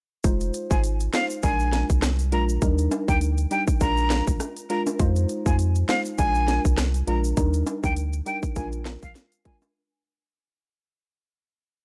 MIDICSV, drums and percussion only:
0, 0, Header, 1, 2, 480
1, 0, Start_track
1, 0, Tempo, 594059
1, 196, Time_signature, 4, 2, 24, 8
1, 9573, End_track
2, 0, Start_track
2, 0, Title_t, "Drums"
2, 194, Note_on_c, 9, 82, 71
2, 196, Note_on_c, 9, 36, 108
2, 196, Note_on_c, 9, 42, 86
2, 275, Note_off_c, 9, 82, 0
2, 277, Note_off_c, 9, 36, 0
2, 277, Note_off_c, 9, 42, 0
2, 328, Note_on_c, 9, 82, 59
2, 332, Note_on_c, 9, 42, 62
2, 409, Note_off_c, 9, 82, 0
2, 412, Note_off_c, 9, 42, 0
2, 434, Note_on_c, 9, 82, 58
2, 437, Note_on_c, 9, 42, 77
2, 514, Note_off_c, 9, 82, 0
2, 518, Note_off_c, 9, 42, 0
2, 572, Note_on_c, 9, 36, 105
2, 573, Note_on_c, 9, 82, 73
2, 652, Note_off_c, 9, 36, 0
2, 654, Note_off_c, 9, 82, 0
2, 675, Note_on_c, 9, 42, 76
2, 681, Note_on_c, 9, 82, 70
2, 756, Note_off_c, 9, 42, 0
2, 762, Note_off_c, 9, 82, 0
2, 809, Note_on_c, 9, 82, 53
2, 812, Note_on_c, 9, 42, 61
2, 890, Note_off_c, 9, 82, 0
2, 893, Note_off_c, 9, 42, 0
2, 916, Note_on_c, 9, 42, 67
2, 919, Note_on_c, 9, 38, 105
2, 920, Note_on_c, 9, 82, 55
2, 924, Note_on_c, 9, 37, 83
2, 997, Note_off_c, 9, 42, 0
2, 1000, Note_off_c, 9, 38, 0
2, 1001, Note_off_c, 9, 82, 0
2, 1005, Note_off_c, 9, 37, 0
2, 1049, Note_on_c, 9, 82, 78
2, 1130, Note_off_c, 9, 82, 0
2, 1154, Note_on_c, 9, 82, 72
2, 1157, Note_on_c, 9, 42, 76
2, 1158, Note_on_c, 9, 36, 87
2, 1234, Note_off_c, 9, 82, 0
2, 1238, Note_off_c, 9, 42, 0
2, 1239, Note_off_c, 9, 36, 0
2, 1287, Note_on_c, 9, 82, 44
2, 1368, Note_off_c, 9, 82, 0
2, 1395, Note_on_c, 9, 38, 69
2, 1396, Note_on_c, 9, 82, 44
2, 1398, Note_on_c, 9, 42, 86
2, 1475, Note_off_c, 9, 38, 0
2, 1477, Note_off_c, 9, 82, 0
2, 1478, Note_off_c, 9, 42, 0
2, 1533, Note_on_c, 9, 36, 84
2, 1533, Note_on_c, 9, 82, 76
2, 1614, Note_off_c, 9, 36, 0
2, 1614, Note_off_c, 9, 82, 0
2, 1635, Note_on_c, 9, 37, 91
2, 1635, Note_on_c, 9, 38, 107
2, 1636, Note_on_c, 9, 82, 72
2, 1638, Note_on_c, 9, 42, 78
2, 1640, Note_off_c, 9, 37, 0
2, 1640, Note_on_c, 9, 37, 88
2, 1716, Note_off_c, 9, 38, 0
2, 1717, Note_off_c, 9, 82, 0
2, 1718, Note_off_c, 9, 42, 0
2, 1721, Note_off_c, 9, 37, 0
2, 1768, Note_on_c, 9, 42, 61
2, 1774, Note_on_c, 9, 82, 56
2, 1849, Note_off_c, 9, 42, 0
2, 1855, Note_off_c, 9, 82, 0
2, 1877, Note_on_c, 9, 42, 77
2, 1957, Note_off_c, 9, 42, 0
2, 2012, Note_on_c, 9, 82, 77
2, 2093, Note_off_c, 9, 82, 0
2, 2115, Note_on_c, 9, 82, 66
2, 2116, Note_on_c, 9, 36, 112
2, 2116, Note_on_c, 9, 42, 88
2, 2195, Note_off_c, 9, 82, 0
2, 2197, Note_off_c, 9, 36, 0
2, 2197, Note_off_c, 9, 42, 0
2, 2248, Note_on_c, 9, 82, 58
2, 2252, Note_on_c, 9, 42, 61
2, 2329, Note_off_c, 9, 82, 0
2, 2332, Note_off_c, 9, 42, 0
2, 2354, Note_on_c, 9, 65, 78
2, 2354, Note_on_c, 9, 82, 57
2, 2357, Note_on_c, 9, 42, 79
2, 2435, Note_off_c, 9, 65, 0
2, 2435, Note_off_c, 9, 82, 0
2, 2438, Note_off_c, 9, 42, 0
2, 2491, Note_on_c, 9, 36, 100
2, 2493, Note_on_c, 9, 82, 76
2, 2572, Note_off_c, 9, 36, 0
2, 2574, Note_off_c, 9, 82, 0
2, 2595, Note_on_c, 9, 42, 75
2, 2601, Note_on_c, 9, 82, 68
2, 2676, Note_off_c, 9, 42, 0
2, 2682, Note_off_c, 9, 82, 0
2, 2728, Note_on_c, 9, 82, 49
2, 2731, Note_on_c, 9, 42, 56
2, 2809, Note_off_c, 9, 82, 0
2, 2812, Note_off_c, 9, 42, 0
2, 2836, Note_on_c, 9, 42, 69
2, 2839, Note_on_c, 9, 82, 55
2, 2916, Note_off_c, 9, 42, 0
2, 2920, Note_off_c, 9, 82, 0
2, 2969, Note_on_c, 9, 82, 80
2, 2970, Note_on_c, 9, 36, 101
2, 3050, Note_off_c, 9, 82, 0
2, 3051, Note_off_c, 9, 36, 0
2, 3075, Note_on_c, 9, 82, 74
2, 3078, Note_on_c, 9, 36, 90
2, 3078, Note_on_c, 9, 42, 72
2, 3155, Note_off_c, 9, 82, 0
2, 3158, Note_off_c, 9, 42, 0
2, 3159, Note_off_c, 9, 36, 0
2, 3208, Note_on_c, 9, 82, 47
2, 3288, Note_off_c, 9, 82, 0
2, 3315, Note_on_c, 9, 38, 122
2, 3317, Note_on_c, 9, 42, 85
2, 3317, Note_on_c, 9, 82, 48
2, 3319, Note_on_c, 9, 37, 94
2, 3395, Note_off_c, 9, 38, 0
2, 3398, Note_off_c, 9, 42, 0
2, 3398, Note_off_c, 9, 82, 0
2, 3400, Note_off_c, 9, 37, 0
2, 3453, Note_on_c, 9, 36, 80
2, 3453, Note_on_c, 9, 82, 77
2, 3534, Note_off_c, 9, 36, 0
2, 3534, Note_off_c, 9, 82, 0
2, 3555, Note_on_c, 9, 37, 86
2, 3555, Note_on_c, 9, 65, 53
2, 3555, Note_on_c, 9, 82, 75
2, 3558, Note_on_c, 9, 42, 77
2, 3636, Note_off_c, 9, 37, 0
2, 3636, Note_off_c, 9, 65, 0
2, 3636, Note_off_c, 9, 82, 0
2, 3638, Note_off_c, 9, 42, 0
2, 3689, Note_on_c, 9, 42, 59
2, 3694, Note_on_c, 9, 82, 53
2, 3769, Note_off_c, 9, 42, 0
2, 3775, Note_off_c, 9, 82, 0
2, 3796, Note_on_c, 9, 42, 79
2, 3877, Note_off_c, 9, 42, 0
2, 3932, Note_on_c, 9, 65, 78
2, 3932, Note_on_c, 9, 82, 80
2, 4013, Note_off_c, 9, 65, 0
2, 4013, Note_off_c, 9, 82, 0
2, 4035, Note_on_c, 9, 82, 70
2, 4036, Note_on_c, 9, 36, 110
2, 4036, Note_on_c, 9, 42, 88
2, 4115, Note_off_c, 9, 82, 0
2, 4117, Note_off_c, 9, 36, 0
2, 4117, Note_off_c, 9, 42, 0
2, 4168, Note_on_c, 9, 82, 61
2, 4172, Note_on_c, 9, 42, 61
2, 4249, Note_off_c, 9, 82, 0
2, 4253, Note_off_c, 9, 42, 0
2, 4275, Note_on_c, 9, 82, 57
2, 4277, Note_on_c, 9, 42, 77
2, 4355, Note_off_c, 9, 82, 0
2, 4357, Note_off_c, 9, 42, 0
2, 4412, Note_on_c, 9, 36, 100
2, 4413, Note_on_c, 9, 82, 79
2, 4492, Note_off_c, 9, 36, 0
2, 4494, Note_off_c, 9, 82, 0
2, 4515, Note_on_c, 9, 42, 76
2, 4520, Note_on_c, 9, 82, 67
2, 4596, Note_off_c, 9, 42, 0
2, 4601, Note_off_c, 9, 82, 0
2, 4648, Note_on_c, 9, 82, 50
2, 4652, Note_on_c, 9, 42, 57
2, 4728, Note_off_c, 9, 82, 0
2, 4733, Note_off_c, 9, 42, 0
2, 4756, Note_on_c, 9, 42, 67
2, 4759, Note_on_c, 9, 38, 103
2, 4760, Note_on_c, 9, 82, 58
2, 4764, Note_on_c, 9, 37, 83
2, 4837, Note_off_c, 9, 42, 0
2, 4840, Note_off_c, 9, 38, 0
2, 4840, Note_off_c, 9, 82, 0
2, 4844, Note_off_c, 9, 37, 0
2, 4889, Note_on_c, 9, 82, 79
2, 4970, Note_off_c, 9, 82, 0
2, 4995, Note_on_c, 9, 82, 73
2, 4998, Note_on_c, 9, 36, 86
2, 4998, Note_on_c, 9, 42, 76
2, 5076, Note_off_c, 9, 82, 0
2, 5079, Note_off_c, 9, 36, 0
2, 5079, Note_off_c, 9, 42, 0
2, 5128, Note_on_c, 9, 82, 49
2, 5209, Note_off_c, 9, 82, 0
2, 5235, Note_on_c, 9, 38, 68
2, 5237, Note_on_c, 9, 82, 44
2, 5238, Note_on_c, 9, 42, 87
2, 5316, Note_off_c, 9, 38, 0
2, 5318, Note_off_c, 9, 82, 0
2, 5319, Note_off_c, 9, 42, 0
2, 5373, Note_on_c, 9, 36, 86
2, 5374, Note_on_c, 9, 82, 81
2, 5454, Note_off_c, 9, 36, 0
2, 5454, Note_off_c, 9, 82, 0
2, 5475, Note_on_c, 9, 37, 90
2, 5475, Note_on_c, 9, 38, 106
2, 5476, Note_on_c, 9, 82, 74
2, 5478, Note_on_c, 9, 42, 74
2, 5480, Note_off_c, 9, 37, 0
2, 5480, Note_on_c, 9, 37, 87
2, 5556, Note_off_c, 9, 38, 0
2, 5557, Note_off_c, 9, 82, 0
2, 5559, Note_off_c, 9, 42, 0
2, 5561, Note_off_c, 9, 37, 0
2, 5609, Note_on_c, 9, 42, 59
2, 5614, Note_on_c, 9, 82, 54
2, 5690, Note_off_c, 9, 42, 0
2, 5695, Note_off_c, 9, 82, 0
2, 5717, Note_on_c, 9, 42, 81
2, 5798, Note_off_c, 9, 42, 0
2, 5852, Note_on_c, 9, 82, 77
2, 5932, Note_off_c, 9, 82, 0
2, 5954, Note_on_c, 9, 82, 69
2, 5956, Note_on_c, 9, 36, 112
2, 5957, Note_on_c, 9, 42, 88
2, 6035, Note_off_c, 9, 82, 0
2, 6037, Note_off_c, 9, 36, 0
2, 6037, Note_off_c, 9, 42, 0
2, 6088, Note_on_c, 9, 82, 58
2, 6092, Note_on_c, 9, 42, 63
2, 6169, Note_off_c, 9, 82, 0
2, 6172, Note_off_c, 9, 42, 0
2, 6193, Note_on_c, 9, 65, 79
2, 6193, Note_on_c, 9, 82, 58
2, 6197, Note_on_c, 9, 42, 82
2, 6274, Note_off_c, 9, 65, 0
2, 6274, Note_off_c, 9, 82, 0
2, 6278, Note_off_c, 9, 42, 0
2, 6332, Note_on_c, 9, 36, 102
2, 6332, Note_on_c, 9, 82, 77
2, 6412, Note_off_c, 9, 36, 0
2, 6413, Note_off_c, 9, 82, 0
2, 6436, Note_on_c, 9, 42, 79
2, 6440, Note_on_c, 9, 82, 69
2, 6516, Note_off_c, 9, 42, 0
2, 6521, Note_off_c, 9, 82, 0
2, 6568, Note_on_c, 9, 82, 52
2, 6572, Note_on_c, 9, 42, 61
2, 6649, Note_off_c, 9, 82, 0
2, 6653, Note_off_c, 9, 42, 0
2, 6677, Note_on_c, 9, 42, 66
2, 6680, Note_on_c, 9, 82, 57
2, 6757, Note_off_c, 9, 42, 0
2, 6761, Note_off_c, 9, 82, 0
2, 6810, Note_on_c, 9, 36, 98
2, 6810, Note_on_c, 9, 82, 80
2, 6891, Note_off_c, 9, 36, 0
2, 6891, Note_off_c, 9, 82, 0
2, 6915, Note_on_c, 9, 82, 72
2, 6918, Note_on_c, 9, 36, 88
2, 6918, Note_on_c, 9, 42, 72
2, 6996, Note_off_c, 9, 82, 0
2, 6999, Note_off_c, 9, 36, 0
2, 6999, Note_off_c, 9, 42, 0
2, 7048, Note_on_c, 9, 82, 47
2, 7052, Note_on_c, 9, 42, 60
2, 7129, Note_off_c, 9, 82, 0
2, 7133, Note_off_c, 9, 42, 0
2, 7155, Note_on_c, 9, 38, 123
2, 7157, Note_on_c, 9, 82, 46
2, 7158, Note_on_c, 9, 42, 83
2, 7160, Note_on_c, 9, 37, 88
2, 7236, Note_off_c, 9, 38, 0
2, 7237, Note_off_c, 9, 82, 0
2, 7239, Note_off_c, 9, 42, 0
2, 7241, Note_off_c, 9, 37, 0
2, 7293, Note_on_c, 9, 36, 83
2, 7293, Note_on_c, 9, 82, 77
2, 7374, Note_off_c, 9, 36, 0
2, 7374, Note_off_c, 9, 82, 0
2, 7396, Note_on_c, 9, 38, 63
2, 7396, Note_on_c, 9, 82, 70
2, 7399, Note_on_c, 9, 42, 75
2, 7477, Note_off_c, 9, 38, 0
2, 7477, Note_off_c, 9, 82, 0
2, 7480, Note_off_c, 9, 42, 0
2, 7530, Note_on_c, 9, 42, 60
2, 7534, Note_on_c, 9, 82, 55
2, 7611, Note_off_c, 9, 42, 0
2, 7615, Note_off_c, 9, 82, 0
2, 7638, Note_on_c, 9, 36, 96
2, 7638, Note_on_c, 9, 42, 78
2, 7719, Note_off_c, 9, 36, 0
2, 7719, Note_off_c, 9, 42, 0
2, 7772, Note_on_c, 9, 65, 76
2, 7772, Note_on_c, 9, 82, 80
2, 7853, Note_off_c, 9, 65, 0
2, 7853, Note_off_c, 9, 82, 0
2, 9573, End_track
0, 0, End_of_file